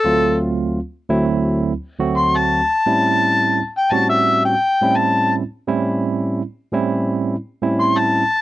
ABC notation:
X:1
M:4/4
L:1/16
Q:"Swing 16ths" 1/4=85
K:D
V:1 name="Harmonica"
A2 z8 z2 =c' a3- | a4- a g a e2 g3 a2 z2 | z12 ^b a3 |]
V:2 name="Tine electric piano"
[D,,F,A,=C^E]4 z2 [D,,F,A,C=E]3 z2 [D,,F,A,CF]3 z2 | [A,,G,^B,CE]4 z2 [A,,G,B,CF]3 z2 [A,,G,B,CE]3 z2 | [A,,G,^B,CE]4 z2 [A,,G,B,CE]3 z2 [A,,G,B,CE]3 z2 |]